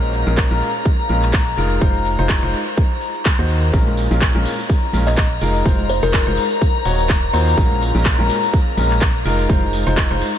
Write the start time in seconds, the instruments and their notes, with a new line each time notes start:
Already playing: fm bass A#1, grand piano A#2 G#3 C#4 F4 A#4, string section A#5
0.03 closed hi-hat, shaker
0.13 open hi-hat, shaker
0.27 fm bass A#1, grand piano A#2 G#3 C#4 F4 A#4, closed hi-hat, shaker
0.37 kick, clap, shaker
0.51 fm bass A#1, grand piano A#2 G#3 C#4 F4 A#4, closed hi-hat, shaker
0.61 open hi-hat, shaker
0.75 closed hi-hat, shaker
0.85 kick, shaker
0.99 shaker
1.09 fm bass A#1, grand piano A#2 G#3 C#4 F4 A#4, open hi-hat, shaker
1.23 clap, closed hi-hat, shaker
1.33 kick, clap, shaker
1.47 closed hi-hat, shaker
1.57 fm bass F1, grand piano G#3 D#4 F4 A#4, open hi-hat, shaker
1.71 closed hi-hat, shaker
1.81 fm bass F1, grand piano G#3 D#4 F4 C5, kick, shaker
1.95 closed hi-hat, shaker
2.05 open hi-hat, shaker
2.19 fm bass F1, grand piano G#3 D#4 F4 C5, closed hi-hat, shaker
2.29 kick, clap, shaker
2.43 fm bass F1, grand piano G#3 D#4 F4 C5, closed hi-hat, shaker
2.53 open hi-hat, shaker
2.67 closed hi-hat, shaker
2.77 kick, shaker
2.91 shaker
3.01 open hi-hat, shaker
3.15 closed hi-hat, shaker
3.25 kick, clap, shaker
3.39 fm bass D#2, grand piano D#3 A#3 D#4 F#4 C5, closed hi-hat, shaker
3.49 open hi-hat, shaker
3.63 closed hi-hat, shaker
3.73 fm bass A#1, grand piano A#2 G#3 C#4 F4 A#4, string section A#5, kick, tambourine, shaker
3.87 closed hi-hat, high conga, shaker
3.97 open hi-hat, tambourine, shaker
4.11 fm bass A#1, grand piano A#2 G#3 C#4 F4 A#4, closed hi-hat, tambourine, shaker
4.22 kick, clap, tambourine, shaker
4.35 fm bass A#1, grand piano A#2 G#3 C#4 F4 A#4, closed hi-hat, high conga, shaker
4.45 open hi-hat, tambourine, shaker
4.59 closed hi-hat, tambourine, shaker
4.70 kick, tambourine, shaker
4.84 shaker
4.93 fm bass A#1, grand piano A#2 G#3 C#4 F4 A#4, open hi-hat, tambourine, high conga, shaker
5.07 kalimba D#5, clap, closed hi-hat, tambourine, shaker
5.17 kick, clap, tambourine, shaker
5.31 closed hi-hat, shaker
5.41 fm bass F1, grand piano G#3 D#4 F4 A#4, open hi-hat, tambourine, shaker
5.55 closed hi-hat, tambourine, shaker
5.65 fm bass F1, grand piano G#3 D#4 F4 C5, kick, tambourine, high conga, shaker
5.79 closed hi-hat, high conga, shaker
5.89 kalimba C5, open hi-hat, tambourine, shaker
6.03 fm bass F1, grand piano G#3 D#4 F4 C5, kalimba A#4, closed hi-hat, tambourine, shaker
6.14 kick, clap, tambourine, shaker
6.27 fm bass F1, grand piano G#3 D#4 F4 C5, closed hi-hat, high conga, shaker
6.37 open hi-hat, tambourine, shaker
6.50 closed hi-hat, tambourine, shaker
6.61 kick, tambourine, shaker
6.75 shaker
6.85 fm bass D#1, grand piano D#3 A#3 D#4 F#4 C#5, open hi-hat, tambourine, shaker
6.99 closed hi-hat, tambourine, shaker
7.09 kick, clap, tambourine, shaker
7.23 closed hi-hat, shaker
7.33 fm bass D#2, grand piano A#2 A#3 D#4 F#4 C5, open hi-hat, tambourine, shaker
7.47 closed hi-hat, tambourine, shaker
7.57 fm bass A#1, grand piano A#2 G#3 C#4 F4 A#4, kick, shaker
7.71 closed hi-hat, high conga, shaker
7.81 open hi-hat, tambourine, shaker
7.95 fm bass A#1, grand piano A#2 G#3 C#4 F4 A#4, closed hi-hat, tambourine, shaker
8.05 kick, clap, tambourine, shaker
8.19 fm bass A#1, grand piano A#2 G#3 C#4 F4 A#4, closed hi-hat, high conga, shaker
8.29 open hi-hat, tambourine, shaker
8.43 closed hi-hat, tambourine, shaker
8.53 kick, tambourine, shaker
8.67 shaker
8.77 fm bass A#1, grand piano A#2 G#3 C#4 F4 A#4, open hi-hat, tambourine, high conga, shaker
8.91 clap, closed hi-hat, tambourine, shaker
9.01 kick, clap, tambourine, shaker
9.15 closed hi-hat, shaker
9.25 fm bass F1, grand piano G#3 D#4 F4 A#4, open hi-hat, tambourine, shaker
9.39 closed hi-hat, tambourine, shaker
9.49 fm bass F1, grand piano G#3 D#4 F4 C5, kick, tambourine, high conga, shaker
9.62 closed hi-hat, high conga, shaker
9.73 open hi-hat, tambourine, shaker
9.86 fm bass F1, grand piano G#3 D#4 F4 C5, closed hi-hat, tambourine, shaker
9.97 kick, clap, tambourine, shaker
10.11 fm bass F1, grand piano G#3 D#4 F4 C5, closed hi-hat, high conga, shaker
10.21 open hi-hat, tambourine, shaker
10.35 closed hi-hat, tambourine, shaker